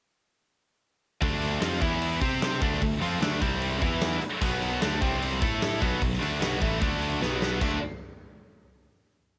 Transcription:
1.21 1.59 D2 medium
1.21 1.59 D3 medium
1.21 1.60 A3 loud
1.21 1.61 D4 loud
1.21 kick medium
1.21 open hi-hat medium
1.42 open hi-hat medium
1.60 1.80 F2 medium
1.60 1.80 F3 medium
1.60 1.80 C4 medium
1.60 1.81 F4 loud
1.60 snare loud
1.60 open hi-hat medium
1.81 2.19 E2 medium
1.81 2.20 E3 medium
1.81 2.20 B3 medium
1.81 2.21 E4 loud
1.81 kick loud
1.81 open hi-hat medium
2.02 open hi-hat medium
2.21 2.59 C3 medium
2.21 2.60 C4 loud
2.21 2.61 G4 medium
2.21 2.61 C5 loud
2.21 kick loud
2.21 open hi-hat medium
2.42 snare loud
2.42 open hi-hat medium
2.61 2.80 D2 loud
2.61 2.80 D3 loud
2.61 2.80 A3 medium
2.61 2.81 D4 loud
2.61 kick loud
2.61 open hi-hat medium
2.81 3.00 D2 medium
2.81 2.97 D3 medium
2.81 2.97 A3 medium
2.81 kick medium
2.81 open hi-hat medium
3.01 3.20 F2 loud
3.01 3.20 F3 medium
3.01 3.21 C4 medium
3.01 3.21 F4 medium
3.01 open hi-hat medium
3.20 3.40 D2 medium
3.20 3.40 D3 medium
3.20 3.40 A3 loud
3.20 3.41 D4 loud
3.20 snare loud
3.20 open hi-hat medium
3.40 3.79 C2 medium
3.40 3.80 C3 loud
3.40 3.80 G3 loud
3.40 3.81 C4 medium
3.40 kick loud
3.40 open hi-hat medium
3.62 open hi-hat medium
3.80 4.19 E2 medium
3.80 4.20 E3 medium
3.80 4.20 B3 medium
3.80 4.21 E4 loud
3.80 kick loud
3.80 open hi-hat medium
4.01 snare loud
4.01 open hi-hat medium
4.21 muted distorted electric guitar stroke medium
4.21 muted picked electric bass stroke soft
4.21 open hi-hat medium
4.41 4.79 B1 loud
4.41 4.80 B2 loud
4.41 4.81 F#3 loud
4.41 4.81 B3 loud
4.41 kick loud
4.41 crash medium
4.62 open hi-hat medium
4.81 5.00 D2 medium
4.81 5.00 D3 medium
4.81 5.01 A3 medium
4.81 5.01 D4 medium
4.81 snare loud
4.81 open hi-hat medium
5.01 5.39 C2 medium
5.01 5.41 C3 loud
5.01 5.39 G3 loud
5.01 5.40 C4 loud
5.01 kick loud
5.01 snare soft
5.01 open hi-hat medium
5.22 open hi-hat medium
5.40 5.79 A2 medium
5.40 5.80 A3 loud
5.40 5.80 E4 medium
5.40 5.80 A4 loud
5.40 kick loud
5.40 open hi-hat medium
5.62 snare loud
5.62 open hi-hat medium
5.80 6.00 B1 loud
5.80 5.99 B2 medium
5.80 6.00 F#3 medium
5.80 6.01 B3 loud
5.80 kick loud
5.80 open hi-hat medium
6.00 6.20 B1 medium
6.00 6.17 B2 medium
6.00 6.17 F#3 medium
6.00 kick medium
6.00 open hi-hat medium
6.13 snare soft
6.19 6.40 D2 loud
6.19 6.39 D3 medium
6.19 6.39 A3 medium
6.19 6.40 D4 loud
6.19 open hi-hat medium
6.39 6.60 B1 medium
6.39 6.59 B2 medium
6.39 6.60 F#3 loud
6.39 6.60 B3 medium
6.39 snare loud
6.39 open hi-hat medium
6.59 6.80 A1 medium
6.59 6.79 A2 medium
6.59 6.80 E3 medium
6.59 6.79 A3 medium
6.59 kick loud
6.59 open hi-hat medium
6.79 7.18 D2 medium
6.79 7.20 D3 medium
6.79 7.20 A3 medium
6.79 7.20 D4 medium
6.79 kick loud
6.79 open hi-hat medium
7.02 open hi-hat medium
7.21 7.58 B1 medium
7.21 7.60 B2 medium
7.21 7.60 F#3 medium
7.21 7.61 B3 medium
7.21 snare medium
7.42 snare medium
7.61 7.80 D2 medium
7.61 7.77 D3 loud
7.61 7.77 A3 medium
7.61 7.77 D4 loud
7.61 kick loud
7.61 crash medium

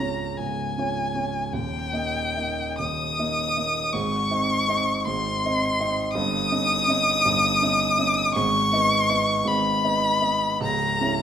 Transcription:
0.00 0.39 C#1 soft
0.00 0.39 C#2 medium
0.00 0.78 C#4 soft
0.00 0.79 F4 soft
0.00 0.79 C#5 soft
0.00 0.39 A#5 medium
0.37 0.76 C#1 soft
0.37 0.76 C#2 soft
0.37 1.54 G#5 medium
0.78 1.11 C#4 soft
0.78 1.12 F4 soft
0.78 1.12 C#5 soft
1.15 1.49 C#4 soft
1.15 1.49 F4 soft
1.15 1.49 C#5 soft
1.53 1.92 D#1 medium
1.53 1.92 D#2 medium
1.53 2.78 G5 medium
1.93 2.33 A#3 soft
1.93 2.33 D#4 soft
1.93 2.33 D#5 soft
2.37 2.76 A#3 soft
2.37 2.76 D#4 soft
2.37 2.76 D#5 soft
2.79 3.18 D#1 medium
2.79 3.18 D#2 soft
2.79 3.95 D#6 loud
3.19 3.53 A#3 soft
3.19 3.53 D#4 soft
3.19 3.53 D#5 soft
3.56 3.90 A#3 soft
3.56 3.90 D#4 soft
3.56 3.90 D#5 soft
3.93 4.30 G#1 medium
3.93 4.30 G#2 medium
3.93 5.06 C#6 loud
4.31 4.65 C4 soft
4.31 4.65 D#4 medium
4.31 4.66 D#5 medium
4.68 5.03 C4 soft
4.68 5.03 D#4 medium
4.68 5.04 D#5 medium
5.05 5.43 G#1 medium
5.05 5.43 G#2 medium
5.05 6.13 C6 loud
5.45 5.77 C4 medium
5.45 5.77 D#4 medium
5.45 5.77 D#5 medium
5.80 6.12 C4 soft
5.80 6.12 D#4 soft
5.80 6.12 D#5 medium
6.14 6.50 G1 medium
6.14 6.50 G2 medium
6.14 8.31 D#6 loud
6.52 6.85 C#4 medium
6.52 6.85 D#4 medium
6.52 6.85 D#5 medium
6.88 7.21 C#4 medium
6.88 7.22 D#4 medium
6.88 7.22 D#5 medium
7.25 7.61 G1 medium
7.25 7.61 G2 medium
7.62 7.95 C#4 medium
7.62 7.96 D#4 medium
7.62 7.96 D#5 medium
7.99 8.32 C#4 medium
7.99 8.33 D#4 soft
7.99 8.33 D#5 medium
8.35 8.72 G#1 medium
8.35 8.72 G#2 medium
8.35 9.49 C#6 loud
8.72 9.05 B3 medium
8.72 9.06 D#4 medium
8.72 9.06 D#5 medium
9.09 9.43 B3 medium
9.09 9.43 D#4 medium
9.09 9.43 D#5 medium
9.45 9.83 G#1 medium
9.45 9.83 G#2 medium
9.45 10.62 B5 loud
9.84 10.19 B3 medium
9.84 10.19 D#4 medium
9.84 10.19 D#5 medium
10.21 10.57 B3 soft
10.21 10.58 D#4 soft
10.21 10.58 D#5 medium
10.61 11.00 C#1 medium
10.61 11.00 C#2 medium
10.61 11.22 A#5 loud
11.01 11.22 C#4 medium
11.01 11.22 E4 soft
11.01 11.22 C#5 medium

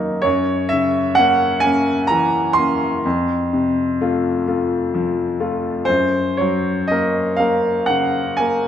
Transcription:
0.00 0.20 F#2 medium
0.00 0.26 F#3 soft
0.00 0.27 A#3 soft
0.00 0.26 D#4 soft
0.00 0.23 A#5 medium
0.22 3.01 F#2 medium
0.22 0.70 C#5 medium
0.69 1.46 C#3 soft
0.69 1.16 E5 medium
1.15 1.60 A#3 soft
1.15 1.60 C#4 soft
1.15 1.62 F#5 medium
1.60 2.06 A#3 soft
1.60 2.06 C#4 soft
1.60 2.08 G#5 medium
2.07 2.86 E3 soft
2.07 2.56 A#5 medium
2.53 3.01 A#3 soft
2.53 3.01 C#4 soft
2.53 5.86 C6 medium
3.05 5.84 F2 medium
3.53 4.28 C3 soft
4.01 4.43 A3 soft
4.01 4.43 F4 medium
4.48 4.89 A3 soft
4.48 4.89 F4 soft
4.94 5.69 F3 soft
5.40 5.85 A3 soft
5.40 5.85 F4 soft
5.85 8.68 F#2 medium
5.85 6.38 C5 medium
6.37 7.20 F#3 soft
6.37 6.89 C#5 medium
6.88 7.36 A#3 soft
6.88 7.36 A#4 soft
6.88 7.38 D#5 medium
7.37 7.85 A#3 soft
7.37 7.86 A#4 soft
7.37 7.88 F5 medium
7.86 8.68 C#3 soft
7.86 8.38 F#5 medium
8.37 8.68 A#3 soft
8.37 8.68 A#4 soft
8.37 8.68 G#5 medium

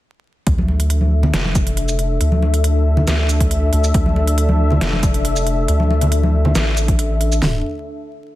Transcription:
0.46 1.32 D2 loud
0.46 7.38 D4 medium
0.46 7.38 A4 medium
0.46 7.38 E5 medium
0.46 kick loud
0.46 closed hi-hat medium
0.58 high conga medium
0.68 muted conga medium
0.80 closed hi-hat medium
0.90 closed hi-hat medium
1.01 high conga medium
1.23 muted conga medium
1.23 low conga medium
1.33 2.19 F1 loud
1.33 snare loud
1.33 closed hi-hat medium
1.45 high conga medium
1.55 kick loud
1.55 closed hi-hat medium
1.55 shaker medium
1.67 closed hi-hat medium
1.77 closed hi-hat medium
1.88 shaker medium
1.99 closed hi-hat medium
2.20 3.06 D2 medium
2.20 closed hi-hat medium
2.32 high conga medium
2.42 muted conga medium
2.54 closed hi-hat medium
2.64 closed hi-hat medium
2.97 muted conga medium
2.97 low conga medium
3.07 3.71 D2 loud
3.07 snare loud
3.07 closed hi-hat medium
3.07 shaker medium
3.29 closed hi-hat medium
3.29 shaker medium
3.41 kick medium
3.41 closed hi-hat medium
3.51 closed hi-hat medium
3.72 3.93 D2 loud
3.72 closed hi-hat medium
3.84 shaker medium
3.94 4.80 D2 loud
3.94 kick loud
3.94 closed hi-hat medium
4.06 high conga medium
4.16 muted conga medium
4.27 closed hi-hat medium
4.38 closed hi-hat medium
4.49 high conga medium
4.70 muted conga medium
4.70 low conga medium
4.81 5.67 F1 loud
4.81 snare loud
4.81 closed hi-hat medium
4.93 high conga medium
5.03 kick loud
5.03 closed hi-hat medium
5.03 shaker medium
5.14 closed hi-hat medium
5.25 closed hi-hat medium
5.36 shaker medium
5.47 closed hi-hat medium
5.68 6.54 D2 loud
5.68 closed hi-hat medium
5.80 high conga medium
5.90 muted conga medium
6.01 closed hi-hat medium
6.01 low conga medium
6.12 closed hi-hat medium
6.23 high conga medium
6.45 muted conga medium
6.45 low conga medium
6.55 7.40 A1 loud
6.55 snare loud
6.55 closed hi-hat medium
6.55 shaker medium
6.77 closed hi-hat medium
6.77 shaker medium
6.88 kick medium
6.88 closed hi-hat medium
6.99 closed hi-hat medium
7.21 closed hi-hat medium
7.32 shaker medium
7.42 snare loud
7.42 floor tom loud

